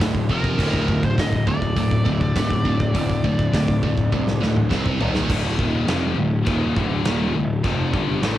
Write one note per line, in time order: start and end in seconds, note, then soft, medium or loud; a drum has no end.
0.00 0.27 D1 medium
0.00 0.27 D2 medium
0.00 0.27 A2 medium
0.00 0.28 D3 medium
0.00 kick medium
0.00 snare loud
0.00 open hi-hat medium
0.15 kick medium
0.29 0.57 F1 medium
0.29 0.58 F2 loud
0.29 0.58 C3 loud
0.29 0.58 F3 loud
0.29 1.04 A#4 medium
0.29 kick medium
0.44 kick medium
0.58 0.86 D1 loud
0.58 0.86 D2 medium
0.58 0.86 A2 medium
0.58 0.86 D3 medium
0.58 kick medium
0.58 crash loud
0.73 kick medium
0.87 1.15 D1 medium
0.87 1.14 D2 medium
0.87 1.15 A2 medium
0.87 kick medium
1.03 1.18 C5 medium
1.03 kick medium
1.18 1.45 D1 medium
1.18 1.44 D2 medium
1.18 1.44 A2 medium
1.18 1.47 D#5 loud
1.18 kick medium
1.18 snare loud
1.18 open hi-hat medium
1.32 kick medium
1.47 1.75 D1 medium
1.47 1.74 D2 medium
1.47 1.74 A2 medium
1.47 4.66 D5 medium
1.47 kick medium
1.62 kick medium
1.76 2.04 D1 loud
1.76 2.03 D2 medium
1.76 2.04 A2 loud
1.76 kick medium
1.76 open hi-hat medium
1.91 kick medium
2.04 2.33 D1 medium
2.04 2.32 D2 medium
2.04 2.33 A2 medium
2.04 2.32 D3 medium
2.04 kick medium
2.21 kick medium
2.35 2.63 D1 medium
2.35 2.62 D2 medium
2.35 2.62 A2 medium
2.35 2.94 D3 medium
2.35 kick medium
2.35 snare loud
2.35 open hi-hat medium
2.50 kick medium
2.65 2.92 D1 medium
2.65 2.91 D2 medium
2.65 2.91 A2 medium
2.65 kick medium
2.80 kick medium
2.94 3.22 D1 loud
2.94 3.20 D2 medium
2.94 3.21 A2 medium
2.94 4.39 D3 loud
2.94 kick medium
2.94 open hi-hat medium
3.09 kick medium
3.24 3.51 D1 medium
3.24 3.50 D2 medium
3.24 3.50 A2 medium
3.24 kick medium
3.39 kick medium
3.53 4.08 D1 medium
3.53 3.79 D2 medium
3.53 3.79 A2 medium
3.53 kick medium
3.53 snare loud
3.53 open hi-hat medium
3.68 kick medium
3.83 4.09 D2 medium
3.83 4.09 A2 medium
3.83 kick medium
3.98 kick medium
4.12 4.39 C2 loud
4.12 4.38 D2 medium
4.12 4.38 A2 medium
4.12 kick medium
4.28 snare medium
4.40 4.69 D1 loud
4.40 4.68 D2 medium
4.40 4.68 A2 medium
4.40 4.68 D3 medium
4.40 snare medium
4.56 mid tom medium
4.71 4.98 C2 medium
4.71 4.98 C3 loud
4.71 4.98 G3 loud
4.71 4.98 C4 loud
4.71 kick medium
4.71 snare medium
4.86 kick medium
5.00 5.27 D#1 medium
5.00 5.27 D#2 loud
5.00 5.27 A#2 loud
5.00 5.28 D#3 loud
5.00 floor tom medium
5.15 snare loud
5.29 5.56 D1 loud
5.29 5.57 D2 medium
5.29 5.58 A2 medium
5.29 5.58 D3 loud
5.29 kick loud
5.29 crash loud
5.29 china medium
5.58 5.86 D#1 loud
5.58 5.87 D#2 medium
5.58 5.87 A#2 loud
5.58 5.87 D#3 loud
5.58 kick medium
5.87 6.14 F1 loud
5.87 6.16 F2 loud
5.87 6.16 C3 loud
5.87 6.16 F3 loud
5.87 snare loud
5.87 china medium
6.16 6.44 D1 medium
6.16 6.41 D2 medium
6.16 6.41 A2 medium
6.45 6.74 D#1 loud
6.45 6.74 D#2 medium
6.45 6.74 A#2 loud
6.45 6.75 D#3 loud
6.45 kick loud
6.45 china medium
6.75 7.03 D1 loud
6.75 7.05 D2 loud
6.75 7.05 A2 loud
6.75 7.05 D3 loud
6.75 kick medium
7.04 7.32 D#1 loud
7.04 7.34 D#2 medium
7.04 7.34 A#2 loud
7.04 7.34 D#3 loud
7.04 snare loud
7.04 china medium
7.35 7.62 D1 medium
7.35 7.58 D2 medium
7.35 7.59 A2 medium
7.64 7.92 F1 loud
7.64 7.92 F2 loud
7.64 7.93 C3 medium
7.64 7.93 F3 loud
7.64 kick loud
7.64 china medium
7.93 8.21 G1 medium
7.93 8.22 G2 medium
7.93 8.22 D3 loud
7.93 8.22 G3 loud
7.93 kick medium
8.22 8.38 A1 medium
8.22 8.38 A2 loud
8.22 8.38 E3 loud
8.22 8.38 A3 loud
8.22 snare loud
8.22 china medium